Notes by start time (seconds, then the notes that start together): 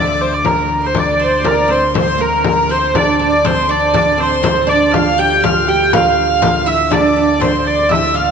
Already playing: D2 D5 D6
0.21 C5
0.34 D5
0.45 A#4 A#5, frame drum
0.83 C5 C6
0.95 D6, frame drum
0.99 D5
1.20 C4 C5 C6
1.45 A#3 A#4 A#5, frame drum
1.68 C4 C5
1.72 C6
1.94 D2 C4 C5 C6, frame drum
2.18 A#3 A#4 A#5
2.44 A#5, frame drum
2.69 C4 C5 C6
2.95 D4 D5 D6, frame drum
3.19 D4 D5 D6
3.44 C4 C5 C6, frame drum
3.69 D4 D5 D6
3.94 D4 D5 D6, frame drum
4.12 D5
4.18 C4 C5 C6
4.43 C4, frame drum
4.67 D4 D5 D6
4.92 F4 F5 F6, frame drum
5.18 G4 G5 G6
5.42 F4 F5 F6, frame drum
5.68 G4 G5, frame drum
5.93 D2 F4 F5 F6, frame drum
6.42 F4, frame drum
6.66 E4 E5 E6
6.91 D4 D5 D6, frame drum
7.16 D4 D5
7.40 C4 C5 C6, frame drum
7.67 D5
7.89 E4 E5 E6, frame drum
8.14 F4 F5 F6